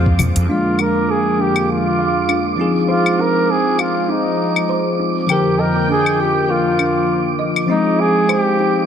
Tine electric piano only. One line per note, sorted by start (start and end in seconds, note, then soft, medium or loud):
0.46 2.55 F3 medium
0.46 2.55 A#3 medium
0.46 2.56 D4 medium
0.51 2.57 G#3 medium
2.56 5.25 F3 medium
2.56 5.25 C4 medium
2.56 5.26 D#4 medium
2.61 5.27 G#4 medium
5.27 7.66 D3 medium
5.27 7.65 F3 medium
5.27 7.66 G5 medium
5.32 7.67 A#4 medium
7.66 8.86 F3 medium
7.66 8.86 C4 medium
7.66 8.86 D#4 medium
7.71 8.86 G#3 medium